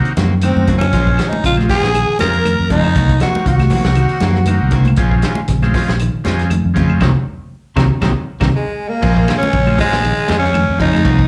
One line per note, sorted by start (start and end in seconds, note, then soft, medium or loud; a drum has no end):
0.00 0.11 D#3 medium
0.00 0.13 A#3 loud
0.00 0.13 C4 medium
0.00 0.13 D#4 medium
0.00 0.13 F#4 loud
0.05 closed hi-hat soft
0.17 0.54 F#2 medium
0.17 0.33 D#3 medium
0.17 0.37 F3 medium
0.17 0.33 A#3 medium
0.17 0.33 C4 medium
0.17 0.33 F#4 medium
0.17 snare medium
0.17 closed hi-hat medium
0.17 high conga loud
0.41 0.63 D#3 medium
0.41 0.70 A#3 medium
0.41 0.70 C4 medium
0.41 0.75 C4 medium
0.41 0.70 D#4 medium
0.41 0.70 F#4 medium
0.41 closed hi-hat medium
0.41 high conga medium
0.41 claves medium
0.56 0.91 F#2 medium
0.56 high conga medium
0.67 0.88 C#3 medium
0.67 0.84 D#3 medium
0.67 0.84 A#3 medium
0.67 0.84 C4 medium
0.67 0.84 F#4 medium
0.67 kick medium
0.67 closed hi-hat soft
0.67 low conga loud
0.78 1.30 C#4 loud
0.78 1.31 C#4 medium
0.78 closed hi-hat soft
0.78 low conga loud
0.78 claves medium
0.93 1.17 A#1 loud
0.93 1.13 F3 medium
0.93 1.09 F3 medium
0.93 1.28 G#3 medium
0.93 1.10 G#3 medium
0.93 1.28 C#4 medium
0.93 1.10 C#4 medium
0.93 1.28 F4 medium
0.93 1.10 F4 medium
0.93 1.28 C5 medium
0.93 kick medium
0.93 closed hi-hat medium
0.93 high conga soft
1.07 kick medium
1.18 1.39 D#3 medium
1.18 1.34 F3 medium
1.18 1.35 G#3 medium
1.18 1.35 C#4 medium
1.18 muted clean electric guitar stroke medium
1.18 snare medium
1.18 closed hi-hat medium
1.18 claves medium
1.28 1.44 D#4 medium
1.28 1.45 D#4 medium
1.33 high conga loud
1.44 1.68 A#1 medium
1.44 1.64 C#3 medium
1.44 1.57 F4 medium
1.44 1.58 F4 medium
1.44 kick medium
1.44 closed hi-hat medium
1.57 1.90 G#3 medium
1.57 1.90 C4 medium
1.57 1.90 C#4 medium
1.57 1.91 F4 loud
1.57 snare soft
1.57 high conga medium
1.57 claves medium
1.69 1.85 F3 medium
1.69 1.90 F3 medium
1.69 1.85 G#3 medium
1.69 1.85 C#4 medium
1.69 1.86 F4 medium
1.69 2.17 G#4 loud
1.69 kick medium
1.69 open hi-hat medium
1.69 low conga medium
1.74 2.19 G#4 medium
1.83 2.07 A#1 medium
1.83 snare medium
1.83 closed hi-hat soft
1.94 2.15 D#3 medium
1.94 closed hi-hat medium
1.94 high conga soft
1.94 claves medium
2.19 2.57 F2 medium
2.19 2.36 F3 medium
2.19 2.40 F3 medium
2.19 2.36 G#3 medium
2.19 2.48 G#3 medium
2.19 2.48 C4 medium
2.19 2.47 C#4 medium
2.19 2.36 C#4 medium
2.19 2.36 F4 medium
2.19 2.48 F4 medium
2.19 2.67 A#4 loud
2.19 snare medium
2.19 closed hi-hat medium
2.19 high conga loud
2.24 2.69 A#4 loud
2.33 closed hi-hat soft
2.45 2.65 D#3 medium
2.45 closed hi-hat medium
2.45 high conga medium
2.45 claves medium
2.59 2.94 F2 medium
2.70 2.91 C#3 medium
2.70 2.87 F3 medium
2.70 2.95 G#3 medium
2.70 2.87 G#3 medium
2.70 2.96 C4 medium
2.70 2.96 C#4 medium
2.70 2.87 C#4 medium
2.70 3.18 D#4 loud
2.70 2.96 F4 medium
2.70 2.87 F4 medium
2.70 kick medium
2.70 closed hi-hat medium
2.70 high conga medium
2.70 low conga loud
2.74 3.19 D#4 medium
2.84 claves medium
2.95 3.19 C2 loud
2.95 3.12 D#3 medium
2.95 3.16 F#3 medium
2.95 3.12 A#3 medium
2.95 3.12 F#4 medium
2.95 muted clean electric guitar stroke medium
2.95 kick medium
2.95 closed hi-hat medium
3.09 kick medium
3.09 closed hi-hat soft
3.20 3.35 D#3 medium
3.20 3.41 F3 medium
3.20 3.35 A#3 medium
3.20 3.35 C4 medium
3.20 3.34 F#4 medium
3.20 3.45 F#4 medium
3.20 snare medium
3.20 closed hi-hat soft
3.20 claves medium
3.25 3.47 F#4 medium
3.35 3.62 A#3 medium
3.35 3.50 A#3 soft
3.35 3.62 C4 medium
3.35 3.50 C4 soft
3.35 3.62 D#4 medium
3.35 3.49 F#4 soft
3.35 3.63 F#4 medium
3.35 high conga loud
3.46 3.70 C2 medium
3.46 3.67 D#3 medium
3.46 4.70 F#4 medium
3.46 4.71 F#4 medium
3.46 kick medium
3.46 closed hi-hat medium
3.46 high conga soft
3.46 low conga medium
3.59 snare soft
3.59 closed hi-hat soft
3.59 high conga medium
3.59 claves medium
3.70 3.88 D#3 medium
3.70 3.92 F3 medium
3.70 3.88 A#3 medium
3.70 3.88 C4 medium
3.70 3.88 F#4 medium
3.70 kick medium
3.70 open hi-hat medium
3.70 low conga medium
3.85 4.09 C2 medium
3.85 4.19 A#3 medium
3.85 4.19 C4 medium
3.85 4.19 D#4 medium
3.85 4.19 F#4 medium
3.85 snare medium
3.95 4.17 D#3 medium
3.95 closed hi-hat medium
3.95 high conga soft
3.95 claves medium
4.09 closed hi-hat soft
4.20 4.59 F#2 medium
4.20 4.38 D#3 medium
4.20 4.43 F3 medium
4.20 4.39 A#3 medium
4.20 4.39 C4 medium
4.20 4.39 F#4 medium
4.20 snare medium
4.20 closed hi-hat soft
4.20 high conga medium
4.35 snare soft
4.45 4.68 D#3 medium
4.45 4.75 A#3 medium
4.45 4.75 C4 medium
4.45 4.75 D#4 medium
4.45 4.75 F#4 medium
4.45 closed hi-hat medium
4.45 high conga medium
4.45 low conga medium
4.45 claves medium
4.61 4.96 C2 medium
4.71 4.93 C#3 medium
4.71 4.89 D#3 medium
4.71 4.89 A#3 medium
4.71 4.89 C4 medium
4.71 4.89 F#4 medium
4.71 kick medium
4.71 closed hi-hat medium
4.71 low conga medium
4.85 closed hi-hat soft
4.85 high conga medium
4.85 claves medium
4.96 5.22 A#1 loud
4.96 5.19 F3 medium
4.96 5.33 G#3 medium
4.96 5.14 G#3 medium
4.96 5.33 C4 medium
4.96 5.33 C#4 medium
4.96 5.15 C#4 medium
4.96 5.33 F4 loud
4.96 5.15 F4 medium
4.96 kick medium
4.96 closed hi-hat medium
4.96 high conga soft
5.11 kick medium
5.22 5.45 D#3 medium
5.22 5.40 G#3 medium
5.22 5.40 C#4 medium
5.22 5.40 F4 medium
5.22 snare medium
5.22 closed hi-hat medium
5.22 claves medium
5.35 high conga loud
5.48 5.73 A#1 loud
5.48 5.70 C#3 medium
5.48 kick medium
5.48 snare soft
5.48 closed hi-hat medium
5.48 high conga soft
5.48 low conga medium
5.62 5.96 G#3 loud
5.62 5.96 C4 medium
5.62 5.96 C#4 medium
5.62 5.96 F4 loud
5.62 snare soft
5.62 high conga medium
5.62 claves medium
5.74 5.95 F3 medium
5.74 5.90 G#3 medium
5.74 5.91 C#4 medium
5.74 5.91 F4 medium
5.74 kick medium
5.74 snare soft
5.74 open hi-hat medium
5.74 low conga medium
5.88 6.12 A#1 medium
5.88 snare medium
5.88 closed hi-hat soft
5.99 6.21 D#3 medium
5.99 closed hi-hat medium
5.99 high conga soft
5.99 claves medium
6.14 muted fingered electric bass stroke soft
6.24 6.62 F2 loud
6.24 6.46 F3 medium
6.24 6.52 G#3 medium
6.24 6.41 G#3 medium
6.24 6.52 C4 medium
6.24 6.52 C#4 medium
6.24 6.41 C#4 medium
6.24 6.52 F4 loud
6.24 6.42 F4 medium
6.24 snare medium
6.24 closed hi-hat medium
6.24 high conga medium
6.39 snare soft
6.39 closed hi-hat soft
6.50 6.72 D#3 medium
6.50 closed hi-hat medium
6.50 high conga medium
6.50 low conga medium
6.50 claves medium
6.65 6.99 F2 medium
6.74 6.97 C#3 medium
6.74 7.00 G#3 medium
6.74 6.92 G#3 medium
6.74 6.99 C4 medium
6.74 7.00 C#4 medium
6.74 6.92 C#4 medium
6.74 7.00 F4 medium
6.74 6.92 F4 medium
6.74 kick medium
6.74 closed hi-hat soft
6.74 high conga medium
6.74 low conga medium
6.90 high conga medium
6.90 claves medium
7.00 7.11 C2 loud
7.00 7.10 C3 loud
7.00 7.10 D#3 loud
7.00 7.10 F#3 loud
7.00 7.09 A#3 medium
7.00 7.10 A#3 loud
7.00 7.09 C4 loud
7.00 7.10 C4 medium
7.00 7.09 D#4 medium
7.00 7.10 D#4 medium
7.00 kick medium
7.00 snare medium
7.00 low conga loud
7.00 claves loud
7.76 7.87 C2 medium
7.76 7.85 C3 medium
7.76 7.85 D#3 medium
7.76 7.85 F#3 medium
7.76 7.86 A#3 medium
7.76 7.85 C4 medium
7.76 7.86 C4 loud
7.76 7.86 D#4 medium
7.76 kick medium
7.76 snare medium
7.76 low conga loud
7.76 claves loud
8.01 8.12 C2 loud
8.01 8.11 C3 medium
8.01 8.11 D#3 loud
8.01 8.11 F#3 loud
8.01 8.11 A#3 loud
8.01 8.10 C4 loud
8.01 8.11 C4 loud
8.01 8.11 D#4 loud
8.01 kick medium
8.01 snare medium
8.01 low conga loud
8.01 claves loud
8.40 8.50 C2 medium
8.40 8.49 C3 medium
8.40 8.49 D#3 medium
8.40 8.49 F#3 medium
8.40 8.48 A#3 loud
8.40 8.49 A#3 loud
8.40 8.48 C4 medium
8.40 8.48 D#4 loud
8.40 kick medium
8.40 snare medium
8.40 low conga loud
8.40 claves loud
8.55 8.90 G#3 medium
8.55 8.91 G#3 medium
8.89 9.37 A#3 loud
8.89 9.39 A#3 medium
9.01 9.27 A#1 loud
9.01 9.18 F3 medium
9.01 9.23 F3 medium
9.01 9.37 G#3 medium
9.01 9.19 G#3 medium
9.01 9.37 C4 medium
9.01 9.19 C#4 medium
9.01 9.37 C#4 medium
9.01 9.37 F4 medium
9.01 9.19 F4 medium
9.01 kick loud
9.01 crash medium
9.01 high conga soft
9.17 kick medium
9.28 9.48 D#3 medium
9.28 9.42 F3 medium
9.28 9.42 G#3 medium
9.28 9.42 C#4 medium
9.28 9.41 F4 medium
9.28 snare medium
9.28 ride bell medium
9.28 claves medium
9.38 9.76 C#4 medium
9.38 9.77 C#4 medium
9.42 9.57 G#3 soft
9.42 9.56 F4 soft
9.42 muted clean electric guitar stroke soft
9.42 high conga loud
9.53 9.77 A#1 loud
9.53 9.74 C#3 medium
9.53 kick medium
9.53 ride bell medium
9.53 high conga soft
9.53 low conga medium
9.66 10.00 G#3 medium
9.66 10.00 C4 medium
9.66 10.00 C#4 medium
9.66 9.77 C#4 soft
9.66 9.78 F4 soft
9.66 10.00 F4 medium
9.66 muted clean electric guitar stroke soft
9.66 high conga medium
9.66 claves medium
9.77 9.94 F3 medium
9.77 9.99 F3 medium
9.77 9.95 G#3 medium
9.77 10.35 G#3 loud
9.77 9.95 C#4 medium
9.77 9.95 F4 medium
9.77 kick medium
9.77 snare soft
9.77 open hi-hat medium
9.77 low conga medium
9.82 10.35 G#3 medium
9.92 10.16 A#1 medium
9.92 snare medium
10.03 10.25 D#3 medium
10.03 ride bell medium
10.03 high conga soft
10.03 claves medium
10.18 muted fingered electric bass stroke soft
10.27 10.66 F2 loud
10.27 10.44 F3 medium
10.27 10.49 F3 medium
10.27 10.45 G#3 medium
10.27 10.56 G#3 medium
10.27 10.56 C4 medium
10.27 10.45 C#4 medium
10.27 10.56 C#4 medium
10.27 10.45 F4 medium
10.27 10.56 F4 medium
10.27 snare medium
10.27 ride bell medium
10.27 high conga loud
10.39 10.77 C#4 loud
10.39 10.78 C#4 medium
10.45 snare soft
10.54 10.75 D#3 medium
10.54 ride bell medium
10.54 high conga medium
10.54 low conga medium
10.54 claves medium
10.69 11.03 F2 loud
10.78 11.00 C#3 medium
10.78 10.95 F3 medium
10.78 11.04 G#3 medium
10.78 10.95 G#3 medium
10.78 11.05 C4 medium
10.78 11.05 C#4 medium
10.78 10.96 C#4 medium
10.78 11.27 D#4 medium
10.78 11.27 D#4 loud
10.78 11.05 F4 medium
10.78 10.96 F4 medium
10.78 kick medium
10.78 ride bell medium
10.78 low conga medium
10.93 snare soft
10.93 high conga medium
10.93 claves medium
11.04 11.28 C2 loud
11.04 11.21 D#3 medium
11.04 11.26 F3 medium
11.04 11.21 A#3 medium
11.04 11.21 C4 medium
11.04 11.21 F#4 medium
11.04 kick loud
11.04 ride bell medium
11.19 kick medium